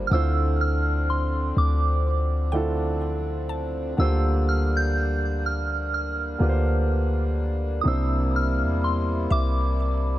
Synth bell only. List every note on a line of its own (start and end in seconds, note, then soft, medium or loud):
0.07 0.12 F6 medium
0.13 0.57 E6 loud
0.61 1.10 F6 loud
1.10 1.59 C6 medium
1.58 2.98 D6 medium
4.00 4.44 E6 loud
4.49 4.76 F6 medium
4.77 5.46 G6 loud
5.46 5.93 F6 loud
5.94 7.34 F6 medium
7.81 7.86 D#6 medium
7.88 8.36 E6 loud
8.36 8.85 F6 loud
8.84 8.98 C6 medium
9.32 10.19 D6 medium